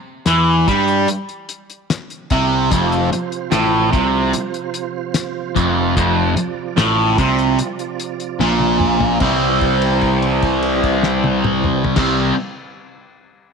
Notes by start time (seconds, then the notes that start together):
0.26 E2 E3, snare, closed hi-hat
0.68 G2 G3, kick, closed hi-hat
0.88 closed hi-hat
1.08 closed hi-hat
1.29 closed hi-hat
1.49 closed hi-hat
1.70 closed hi-hat
1.90 snare, closed hi-hat
2.10 closed hi-hat
2.30 C2 C3, kick, closed hi-hat
2.71 F1 F2 C3 F3 F4 C5, kick, closed hi-hat
2.92 closed hi-hat
3.12 muted distorted electric guitar stroke, muted picked electric bass stroke, closed hi-hat
3.32 closed hi-hat
3.51 A1 A2, snare, closed hi-hat
3.91 C2 C3, kick, snare, closed hi-hat
4.33 closed hi-hat
4.54 closed hi-hat
4.74 closed hi-hat
5.14 snare, closed hi-hat
5.55 F1 F2, kick, closed hi-hat
5.96 F1 F2 D5, kick, closed hi-hat
6.36 muted distorted electric guitar stroke, muted picked electric bass stroke, closed hi-hat
6.77 A1 A2, snare, closed hi-hat
7.18 C2 C3, kick, closed hi-hat
7.39 closed hi-hat
7.59 closed hi-hat
7.79 closed hi-hat
8.00 closed hi-hat
8.20 closed hi-hat
8.40 A#1 A#2, snare
8.60 high tom
8.80 mid tom
9.00 floor tom
9.20 C2 C3 E3 G3 C4 G4 C5, kick, crash
9.24 C4
9.61 kick, crash
9.82 crash
10.01 kick, crash
10.22 crash
10.42 kick, crash
10.62 crash
10.83 kick, crash
11.03 snare
11.24 high tom
11.44 mid tom
11.64 mid tom
11.84 floor tom
11.96 C2 C3 E3 G3 C4 G4 C5, kick, snare, crash
12.00 C4